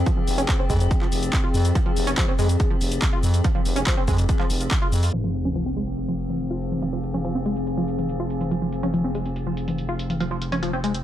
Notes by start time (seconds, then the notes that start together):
Already playing: F3 C4 G#4 F5 G5
0.06 F3, kick, closed hi-hat, shaker
0.17 F3
0.28 F1, open hi-hat, shaker
0.38 C#4, closed hi-hat, shaker
0.49 F3, kick, clap, closed hi-hat, shaker
0.59 C4
0.70 F2 G#3, kick, open hi-hat, shaker
0.80 closed hi-hat, shaker
0.91 kick, closed hi-hat, shaker
1.01 F3, clap
1.12 F1, open hi-hat, shaker
1.23 closed hi-hat, shaker
1.33 kick, clap, closed hi-hat, shaker
1.44 F4
1.54 F2, open hi-hat, shaker
1.65 closed hi-hat, shaker
1.75 F3, kick, closed hi-hat, shaker
1.86 F3
1.96 F1, open hi-hat, shaker
2.07 C#4, closed hi-hat, shaker
2.18 F3, kick, clap, closed hi-hat, shaker
2.28 C4
2.39 F2 G#3, open hi-hat, shaker
2.49 closed hi-hat, shaker
2.60 kick, closed hi-hat, shaker
2.71 F3
2.81 F1, open hi-hat, shaker
2.92 closed hi-hat, shaker
3.02 kick, clap, closed hi-hat, shaker
3.13 F4
3.23 F2, open hi-hat, shaker
3.34 closed hi-hat, shaker
3.44 F3, kick, closed hi-hat, shaker
3.55 F3
3.65 F1, open hi-hat, shaker
3.76 C#4, closed hi-hat, shaker
3.87 F3, kick, clap, closed hi-hat, shaker
3.97 C4
4.08 F2 G#3, kick, open hi-hat, shaker
4.18 closed hi-hat, shaker
4.29 kick, closed hi-hat, shaker
4.40 F3, clap
4.50 F1, open hi-hat, shaker
4.61 closed hi-hat, shaker
4.71 kick, clap, closed hi-hat, shaker
4.82 F4
4.92 F2, open hi-hat, shaker
5.03 open hi-hat, shaker
5.13 F1 F3 C4, sub drop
5.24 F3
5.34 F5, closed hi-hat
5.45 C#4, closed hi-hat, mid tom
5.53 F3 G#4, closed hi-hat
5.66 C4
5.77 G#3, closed hi-hat
5.87 G#5, closed hi-hat
5.98 closed hi-hat
6.08 F3
6.19 closed hi-hat
6.30 closed hi-hat, mid tom
6.40 closed hi-hat
6.51 F4
6.61 closed hi-hat
6.72 closed hi-hat, mid tom
6.82 F3, closed hi-hat
6.93 F3
7.04 closed hi-hat
7.14 C#4, closed hi-hat, mid tom
7.25 F3, closed hi-hat
7.35 C4
7.46 G#3, closed hi-hat
7.56 closed hi-hat
7.67 closed hi-hat
7.77 F3
7.88 closed hi-hat
7.99 closed hi-hat, mid tom
8.09 closed hi-hat
8.20 F4
8.30 closed hi-hat
8.41 closed hi-hat, mid tom
8.51 F3, closed hi-hat
8.62 F3
8.73 closed hi-hat
8.83 C#4, closed hi-hat, mid tom
8.94 F3, closed hi-hat
9.04 C4
9.15 G#3, closed hi-hat
9.25 closed hi-hat
9.36 closed hi-hat
9.47 F3
9.57 closed hi-hat
9.68 closed hi-hat, mid tom
9.78 closed hi-hat
9.89 F4
9.99 closed hi-hat
10.10 closed hi-hat, mid tom
10.20 F3, closed hi-hat
10.31 F3
10.42 closed hi-hat
10.52 C#4, closed hi-hat, mid tom
10.63 F3, closed hi-hat
10.73 C4
10.84 G#3, closed hi-hat
10.94 closed hi-hat